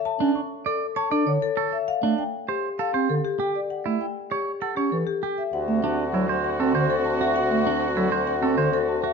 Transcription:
<<
  \new Staff \with { instrumentName = "Marimba" } { \time 6/4 \key a \mixolydian \tempo 4 = 197 a''8 r8 cis'''8 r8 a'8 r8 a''8 a'8 cis''8 a'8 cis'''8 e''8 | f''8 r8 g''8 r8 g'8 r8 f''8 g'8 a'8 g'8 g''8 d''8 | fis''8 r8 g''8 r8 g'8 r8 fis''8 g'8 a'8 g'8 g''8 e''8 | \key d \mixolydian fis''8 e''8 a''8 r8 a'8 r8 fis''8 a'8 c''8 a'8 a''8 e''8 |
fis''8 e''8 a''8 r8 a'8 r8 fis''8 a'8 c''8 a'8 a''8 e''8 | }
  \new Staff \with { instrumentName = "Clean electric guitar" } { \time 6/4 \key a \mixolydian r8 d'8 r4 d''8 r8 cis''8 d''8 r4 a'8 r8 | r8 d'8 r4 c''8 r8 a'8 c''8 r4 g'8 r8 | r8 e'8 r4 cis''8 r8 a'8 cis''8 r4 g'8 r8 | \key d \mixolydian r4 d'8 r8 e'8 c''8 r8 a'8 c''8 r4 fis'8 |
r4 d'8 r8 e'8 c''8 r8 a'8 c''8 r4 fis'8 | }
  \new Staff \with { instrumentName = "Oboe" } { \time 6/4 \key a \mixolydian r1. | r1. | r1. | \key d \mixolydian fis'1.~ |
fis'1~ fis'4. r8 | }
  \new Staff \with { instrumentName = "String section" } { \time 6/4 \key a \mixolydian r1. | r1. | r1. | \key d \mixolydian <c' fis'>1.~ |
<c' fis'>1~ <c' fis'>4. r8 | }
  \new Staff \with { instrumentName = "Bass clarinet" } { \time 6/4 \key a \mixolydian r8 cis'8 r2 r8 d'8 d8 r4. | r8 a8 r2 r8 c'8 d8 r4. | r8 a8 r2 r8 cis'8 e8 r4. | \key d \mixolydian r8 a8 r4 fis8 r4 c'8 d8 r4. |
r8 a8 r4 fis8 r4 c'8 d8 r4. | }
  \new Staff \with { instrumentName = "Bassoon" } { \clef bass \time 6/4 \key a \mixolydian r1. | r1. | r1. | \key d \mixolydian d,1.~ |
d,1. | }
>>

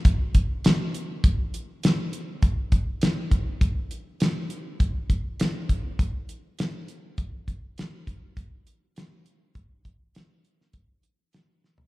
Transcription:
\new DrumStaff \with { instrumentName = "Drums" } \drummode { \time 4/4 \tempo 4 = 101 <hh bd>8 <hh bd>8 <hh sn>8 hh8 <hh bd>8 hh8 <hh sn>8 hh8 | <hh bd>8 <hh bd>8 <hh sn>8 <hh bd>8 <hh bd>8 hh8 <hh sn>8 hh8 | <hh bd>8 <hh bd>8 <hh sn>8 <hh bd>8 <hh bd>8 hh8 <hh sn>8 hh8 | <hh bd>8 <hh bd>8 <hh sn>8 <hh bd>8 <hh bd>8 hh8 <hh sn>8 hh8 |
<hh bd>8 <hh bd>8 <hh sn>8 hh16 sn16 <hh bd>8 hh8 <hh sn>8 sn16 tomfh16 | }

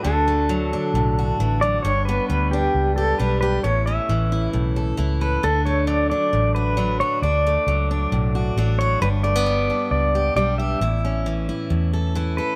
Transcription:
<<
  \new Staff \with { instrumentName = "Pedal steel guitar" } { \time 4/4 \key d \major \tempo 4 = 134 a'2.~ a'8 d''8 | cis''8 b'8 b'8 g'4 a'8 b'8 b'8 | cis''8 e''4. r4. b'8 | a'8 cis''8 d''8 d''4 b'4 cis''8 |
d''2.~ d''8 cis''8 | b'8 d''4. d''4 d''8 e''8~ | e''2. r8 b'8 | }
  \new Staff \with { instrumentName = "Steel-string acoustic guitar" } { \time 4/4 \key d \major << { <a d' fis'>8 a4 d'4 fis'4. | d'8 b4 d'4 g'8 d'8 g'8 | e'8 cis'4 e'4 a'8 e'8 a'8 | d'8 a4 d'4 fis'8 d'8 fis'8 |
d'8 a4 d'4 fis'8 d'8 fis'8 | d'8 a16 b8. d'4 g'8 d'8 g'8 | e'8 cis'4 e'4 a'8 e'8 a'8 | } \\ { d4 fis4 a,4 e8 fis8 | g,4 g2 g4 | a,4 e4 a,4 e4 | d4 fis4 a,4 fis4 |
r4 fis4 a,4 fis4 | g,4 g2 g4 | a,4 e4 a,4 e4 | } >> }
  \new Staff \with { instrumentName = "Fingered electric bass" } { \clef bass \time 4/4 \key d \major d,2 b,,4 a,,4 | g,,4 d,4 cis,4 b,,4 | a,,4 a,,4 b,,4 cis,4 | d,2 a,,2 |
d,4 cis,4 b,,4 a,,4 | g,,2 cis,4 b,,4 | a,,2 e,2 | }
>>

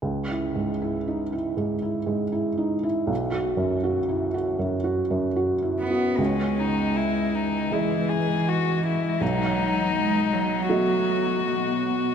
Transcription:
<<
  \new Staff \with { instrumentName = "Felt piano" } { \time 4/4 \key cis \minor \tempo 4 = 79 \tuplet 3/2 { cis,8 e'8 gis,8 e'8 dis'8 e'8 gis,8 e'8 gis,8 e'8 dis'8 e'8 } | \tuplet 3/2 { b,,8 fis'8 fis,8 fis'8 e'8 fis'8 fis,8 fis'8 fis,8 fis'8 e'8 fis'8 } | cis,2 <gis e' dis''>2 | b,,2 <a fis' dis''>2 | }
  \new Staff \with { instrumentName = "Violin" } { \time 4/4 \key cis \minor r1 | r1 | cis'8 dis'8 e'8 dis'8 e'8 gis'8 fis'8 e'8 | dis'2 fis'2 | }
  \new Staff \with { instrumentName = "Ambient pad" } { \time 4/4 \key cis \minor << { r1 | r1 | dis''1~ | dis''1 | } \\ { r1 | r1 | <e gis>1 | <b fis'>1 | } >> }
  \new Staff \with { instrumentName = "Cello" } { \clef bass \time 4/4 \key cis \minor r1 | r2. r8 b8 | gis2 e2 | fis4 gis8 fis2 r8 | }
>>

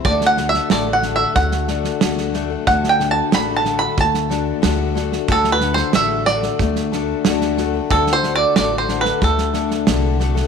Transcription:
<<
  \new Staff \with { instrumentName = "Five-string banjo" } { \time 4/4 \key d \mixolydian \tempo 4 = 92 \tuplet 3/2 { d''8 fis''8 e''8 d''8 fis''8 e''8 } fis''4. r8 | \tuplet 3/2 { fis''8 g''8 a''8 b''8 a''8 b''8 } a''4. r8 | \tuplet 3/2 { a'8 b'8 c''8 } e''8 d''2 r8 | \tuplet 3/2 { a'8 c''8 d''8 d''8 c''8 b'8 } a'4. r8 | }
  \new Staff \with { instrumentName = "Twelve-string acoustic guitar" } { \time 4/4 \key d \mixolydian <d a d' fis' a'>8 <a d' fis' a'>8 <d a d' fis' a'>16 <d' fis' a'>16 <a d' fis' a'>16 <d' fis' a'>8. <a d' fis' a'>8 <d a d' fis' a'>8 <a d' fis' a'>16 <d' fis' a'>16 | <d a d' fis' a'>8 <a d' fis' a'>8 <d a d' fis' a'>16 <d' fis' a'>16 <a d' fis' a'>16 <d' fis' a'>8. <a d' fis' a'>8 <d a d' fis' a'>8 <a d' fis' a'>16 <d' fis' a'>16 | <d a d' fis' a'>8 <a d' fis' a'>8 <d a d' fis' a'>16 <d' fis' a'>16 <a d' fis' a'>16 <d' fis' a'>8. <a d' fis' a'>8 <d a d' fis' a'>8 <a d' fis' a'>16 <d' fis' a'>16 | <d a d' fis' a'>8 <a d' fis' a'>8 <d a d' fis' a'>16 <d' fis' a'>16 <a d' fis' a'>16 <d' fis' a'>8. <a d' fis' a'>8 <d a d' fis' a'>8 <a d' fis' a'>16 <d' fis' a'>16 | }
  \new Staff \with { instrumentName = "Steel-string acoustic guitar" } { \time 4/4 \key d \mixolydian << { r4 a4 a8 d'8 fis'8 a8 | r4 a4 a8 d'8 fis'8 a8 | r4 a4 a8 d'8 fis'8 a8 | r4 a4 a8 d'8 fis'8 a8 | } \\ { d,8 d4 d2~ d8 | d,8 d4 d2~ d8 | d,8 d4 d2~ d8 | d,8 d4 d2~ d8 | } >> }
  \new Staff \with { instrumentName = "Upright bass" } { \clef bass \time 4/4 \key d \mixolydian d,4 a,,4 d,4 d,4 | d,4 a,,4 d,4 d,4 | d,4 a,,4 d,4 d,4 | d,4 a,,4 d,4 c,4 | }
  \new DrumStaff \with { instrumentName = "Drums" } \drummode { \time 4/4 <bd sn>16 sn16 sn16 sn16 sn8 sn8 <bd sn>16 sn16 sn16 sn16 sn16 sn16 sn8 | <bd sn>16 sn16 sn8 sn8 sn8 <bd sn>16 sn16 sn8 sn8 sn16 sn16 | <bd sn>16 sn16 sn16 sn16 sn8 sn16 sn16 <bd sn>16 sn16 sn8 sn16 sn16 sn8 | <bd sn>16 sn16 sn8 sn8 sn16 sn16 <bd sn>16 sn16 sn16 sn16 sn8 sn16 sn16 | }
>>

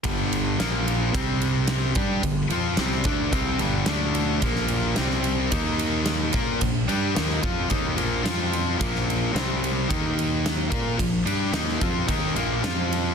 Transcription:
<<
  \new Staff \with { instrumentName = "Distorted electric guitar" } { \clef bass \time 4/4 \key bes \major \tempo 4 = 110 <g, d g>4 <bes, f bes>4 <c g c'>4. <g d' g'>8 | <g, d>8 <f c' f'>8 <c g c'>8 <d a d'>8 <c g c'>8 <g, d g>8 <d a d'>4 | <bes, f bes>4 <c g c'>4 <ees bes ees'>4. <bes f' bes'>8 | <bes, f>8 <g d' g'>8 <ees bes ees'>8 <f c' f'>8 <ees bes ees'>8 <bes, f bes>8 <f c' f'>4 |
<bes, f bes>4 <c g c'>4 <ees bes ees'>4. <bes f' bes'>8 | <bes, f>8 <g d' g'>8 <ees bes ees'>8 <f c' f'>8 <ees bes ees'>8 <bes, f bes>8 <f c' f'>4 | }
  \new Staff \with { instrumentName = "Overdriven electric guitar" } { \clef bass \time 4/4 \key bes \major <g, d g>4 <bes, f bes>4 <c g c'>4. <g d' g'>8 | <g, d>8 <f c' f'>8 <c g c'>8 <d a d'>8 <c g c'>8 <g, d g>8 <d a d'>4 | <bes, f bes>4 <c g c'>4 <ees bes ees'>4. <bes f' bes'>8 | <bes, f>8 <g d' g'>8 <ees bes ees'>8 <f c' f'>8 <ees bes ees'>8 <bes, f bes>8 <f c' f'>4 |
<bes, f bes>4 <c g c'>4 <ees bes ees'>4. <bes f' bes'>8 | <bes, f>8 <g d' g'>8 <ees bes ees'>8 <f c' f'>8 <ees bes ees'>8 <bes, f bes>8 <f c' f'>4 | }
  \new Staff \with { instrumentName = "Fingered electric bass" } { \clef bass \time 4/4 \key bes \major g,,4 bes,,4 c,4. g,8 | g,,8 f,8 c,8 d,8 c,8 g,,8 d,4 | bes,,4 c,4 ees,4. bes,8 | bes,,8 g,8 ees,8 f,8 ees,8 bes,,8 f,4 |
bes,,4 c,4 ees,4. bes,8 | bes,,8 g,8 ees,8 f,8 ees,8 bes,,8 f,4 | }
  \new DrumStaff \with { instrumentName = "Drums" } \drummode { \time 4/4 <bd cymr>8 cymr8 <cymr sn>8 cymr8 <bd cymr>8 cymr8 <cymr sn>8 <bd cymr>8 | <bd cymr>8 cymr8 <cymr sn>16 sn16 <bd cymr>8 <bd cymr>8 cymr8 <cymr sn>8 cymr8 | <bd cymr>16 sn16 cymr8 <cymr sn>16 sn16 cymr8 <bd cymr>8 cymr8 <cymr sn>8 <bd cymr>8 | <bd cymr>8 cymr8 <cymr sn>16 sn16 <bd cymr>8 <bd cymr>8 cymr8 <cymr sn>8 cymr8 |
<bd cymr>16 sn16 cymr8 <cymr sn>8 cymr8 <bd cymr>8 cymr8 <cymr sn>8 <bd cymr>8 | <bd cymr>8 cymr8 <cymr sn>16 sn16 <bd cymr>8 <bd cymr>8 cymr8 <cymr sn>8 cymr8 | }
>>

